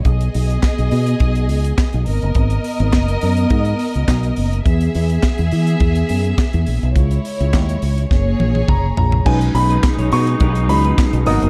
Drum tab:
CC |----------------|----------------|----------------|----------------|
HH |xxoxxxoxxxoxxxox|xxoxxxoxxxoxxxox|xxoxxxoxxxoxxxox|xxoxxxox--------|
CP |----x-------x---|----x-------x---|----x-------x---|----x-----------|
SD |----o-------o---|----o-------o---|----o-------o---|----o---o-------|
T1 |----------------|----------------|----------------|----------oo----|
T2 |----------------|----------------|----------------|------------o---|
FT |----------------|----------------|----------------|--------------oo|
BD |o---o---o---o---|o---o---o---o---|o---o---o---o---|o---o---o---o---|

CC |x---------------|
HH |-xoxxxoxxxoxxxox|
CP |----x-------x---|
SD |----o-------o---|
T1 |----------------|
T2 |----------------|
FT |----------------|
BD |o---o---o---o---|